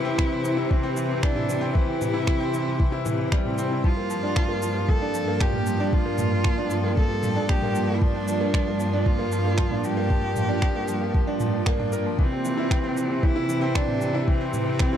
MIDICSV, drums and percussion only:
0, 0, Header, 1, 2, 480
1, 0, Start_track
1, 0, Tempo, 521739
1, 1613, Time_signature, 4, 2, 24, 8
1, 13773, End_track
2, 0, Start_track
2, 0, Title_t, "Drums"
2, 171, Note_on_c, 9, 26, 98
2, 172, Note_on_c, 9, 36, 117
2, 263, Note_off_c, 9, 26, 0
2, 264, Note_off_c, 9, 36, 0
2, 412, Note_on_c, 9, 82, 66
2, 504, Note_off_c, 9, 82, 0
2, 652, Note_on_c, 9, 36, 118
2, 744, Note_off_c, 9, 36, 0
2, 891, Note_on_c, 9, 82, 65
2, 983, Note_off_c, 9, 82, 0
2, 1132, Note_on_c, 9, 26, 97
2, 1132, Note_on_c, 9, 36, 112
2, 1224, Note_off_c, 9, 26, 0
2, 1224, Note_off_c, 9, 36, 0
2, 1254, Note_on_c, 9, 45, 59
2, 1346, Note_off_c, 9, 45, 0
2, 1375, Note_on_c, 9, 82, 64
2, 1467, Note_off_c, 9, 82, 0
2, 1612, Note_on_c, 9, 36, 111
2, 1704, Note_off_c, 9, 36, 0
2, 1855, Note_on_c, 9, 45, 56
2, 1855, Note_on_c, 9, 82, 64
2, 1947, Note_off_c, 9, 45, 0
2, 1947, Note_off_c, 9, 82, 0
2, 2092, Note_on_c, 9, 26, 91
2, 2093, Note_on_c, 9, 36, 116
2, 2184, Note_off_c, 9, 26, 0
2, 2185, Note_off_c, 9, 36, 0
2, 2336, Note_on_c, 9, 82, 68
2, 2428, Note_off_c, 9, 82, 0
2, 2574, Note_on_c, 9, 36, 111
2, 2666, Note_off_c, 9, 36, 0
2, 2813, Note_on_c, 9, 45, 62
2, 2813, Note_on_c, 9, 82, 67
2, 2905, Note_off_c, 9, 45, 0
2, 2905, Note_off_c, 9, 82, 0
2, 3055, Note_on_c, 9, 26, 99
2, 3055, Note_on_c, 9, 36, 113
2, 3147, Note_off_c, 9, 26, 0
2, 3147, Note_off_c, 9, 36, 0
2, 3176, Note_on_c, 9, 45, 57
2, 3268, Note_off_c, 9, 45, 0
2, 3296, Note_on_c, 9, 82, 64
2, 3388, Note_off_c, 9, 82, 0
2, 3534, Note_on_c, 9, 36, 109
2, 3626, Note_off_c, 9, 36, 0
2, 3775, Note_on_c, 9, 82, 63
2, 3867, Note_off_c, 9, 82, 0
2, 4012, Note_on_c, 9, 26, 93
2, 4015, Note_on_c, 9, 36, 114
2, 4104, Note_off_c, 9, 26, 0
2, 4107, Note_off_c, 9, 36, 0
2, 4253, Note_on_c, 9, 82, 66
2, 4345, Note_off_c, 9, 82, 0
2, 4495, Note_on_c, 9, 36, 106
2, 4587, Note_off_c, 9, 36, 0
2, 4734, Note_on_c, 9, 82, 65
2, 4826, Note_off_c, 9, 82, 0
2, 4973, Note_on_c, 9, 26, 94
2, 4975, Note_on_c, 9, 36, 108
2, 5065, Note_off_c, 9, 26, 0
2, 5067, Note_off_c, 9, 36, 0
2, 5090, Note_on_c, 9, 45, 57
2, 5182, Note_off_c, 9, 45, 0
2, 5212, Note_on_c, 9, 82, 65
2, 5304, Note_off_c, 9, 82, 0
2, 5454, Note_on_c, 9, 36, 101
2, 5546, Note_off_c, 9, 36, 0
2, 5688, Note_on_c, 9, 45, 61
2, 5688, Note_on_c, 9, 82, 59
2, 5780, Note_off_c, 9, 45, 0
2, 5780, Note_off_c, 9, 82, 0
2, 5929, Note_on_c, 9, 26, 91
2, 5935, Note_on_c, 9, 36, 110
2, 6021, Note_off_c, 9, 26, 0
2, 6027, Note_off_c, 9, 36, 0
2, 6169, Note_on_c, 9, 82, 62
2, 6261, Note_off_c, 9, 82, 0
2, 6415, Note_on_c, 9, 36, 111
2, 6507, Note_off_c, 9, 36, 0
2, 6653, Note_on_c, 9, 45, 63
2, 6653, Note_on_c, 9, 82, 61
2, 6745, Note_off_c, 9, 45, 0
2, 6745, Note_off_c, 9, 82, 0
2, 6892, Note_on_c, 9, 26, 87
2, 6895, Note_on_c, 9, 36, 106
2, 6984, Note_off_c, 9, 26, 0
2, 6987, Note_off_c, 9, 36, 0
2, 7013, Note_on_c, 9, 45, 59
2, 7105, Note_off_c, 9, 45, 0
2, 7133, Note_on_c, 9, 82, 63
2, 7225, Note_off_c, 9, 82, 0
2, 7375, Note_on_c, 9, 36, 109
2, 7467, Note_off_c, 9, 36, 0
2, 7617, Note_on_c, 9, 82, 60
2, 7709, Note_off_c, 9, 82, 0
2, 7856, Note_on_c, 9, 36, 110
2, 7857, Note_on_c, 9, 26, 95
2, 7948, Note_off_c, 9, 36, 0
2, 7949, Note_off_c, 9, 26, 0
2, 8095, Note_on_c, 9, 82, 65
2, 8187, Note_off_c, 9, 82, 0
2, 8336, Note_on_c, 9, 36, 112
2, 8428, Note_off_c, 9, 36, 0
2, 8575, Note_on_c, 9, 82, 62
2, 8667, Note_off_c, 9, 82, 0
2, 8810, Note_on_c, 9, 26, 96
2, 8815, Note_on_c, 9, 36, 107
2, 8902, Note_off_c, 9, 26, 0
2, 8907, Note_off_c, 9, 36, 0
2, 8933, Note_on_c, 9, 45, 62
2, 9025, Note_off_c, 9, 45, 0
2, 9053, Note_on_c, 9, 82, 62
2, 9145, Note_off_c, 9, 82, 0
2, 9294, Note_on_c, 9, 36, 103
2, 9386, Note_off_c, 9, 36, 0
2, 9532, Note_on_c, 9, 45, 66
2, 9532, Note_on_c, 9, 82, 59
2, 9624, Note_off_c, 9, 45, 0
2, 9624, Note_off_c, 9, 82, 0
2, 9771, Note_on_c, 9, 26, 95
2, 9773, Note_on_c, 9, 36, 105
2, 9863, Note_off_c, 9, 26, 0
2, 9865, Note_off_c, 9, 36, 0
2, 10010, Note_on_c, 9, 82, 61
2, 10102, Note_off_c, 9, 82, 0
2, 10253, Note_on_c, 9, 36, 107
2, 10345, Note_off_c, 9, 36, 0
2, 10489, Note_on_c, 9, 45, 74
2, 10489, Note_on_c, 9, 82, 62
2, 10581, Note_off_c, 9, 45, 0
2, 10581, Note_off_c, 9, 82, 0
2, 10729, Note_on_c, 9, 26, 93
2, 10732, Note_on_c, 9, 36, 104
2, 10821, Note_off_c, 9, 26, 0
2, 10824, Note_off_c, 9, 36, 0
2, 10850, Note_on_c, 9, 45, 64
2, 10942, Note_off_c, 9, 45, 0
2, 10972, Note_on_c, 9, 82, 65
2, 11064, Note_off_c, 9, 82, 0
2, 11212, Note_on_c, 9, 36, 107
2, 11304, Note_off_c, 9, 36, 0
2, 11454, Note_on_c, 9, 82, 65
2, 11546, Note_off_c, 9, 82, 0
2, 11692, Note_on_c, 9, 36, 116
2, 11694, Note_on_c, 9, 26, 96
2, 11784, Note_off_c, 9, 36, 0
2, 11786, Note_off_c, 9, 26, 0
2, 11934, Note_on_c, 9, 82, 62
2, 12026, Note_off_c, 9, 82, 0
2, 12173, Note_on_c, 9, 36, 114
2, 12265, Note_off_c, 9, 36, 0
2, 12415, Note_on_c, 9, 82, 62
2, 12507, Note_off_c, 9, 82, 0
2, 12653, Note_on_c, 9, 26, 104
2, 12654, Note_on_c, 9, 36, 106
2, 12745, Note_off_c, 9, 26, 0
2, 12746, Note_off_c, 9, 36, 0
2, 12771, Note_on_c, 9, 45, 63
2, 12863, Note_off_c, 9, 45, 0
2, 12892, Note_on_c, 9, 82, 64
2, 12984, Note_off_c, 9, 82, 0
2, 13135, Note_on_c, 9, 36, 110
2, 13227, Note_off_c, 9, 36, 0
2, 13373, Note_on_c, 9, 45, 63
2, 13373, Note_on_c, 9, 82, 66
2, 13465, Note_off_c, 9, 45, 0
2, 13465, Note_off_c, 9, 82, 0
2, 13611, Note_on_c, 9, 26, 96
2, 13616, Note_on_c, 9, 36, 116
2, 13703, Note_off_c, 9, 26, 0
2, 13708, Note_off_c, 9, 36, 0
2, 13773, End_track
0, 0, End_of_file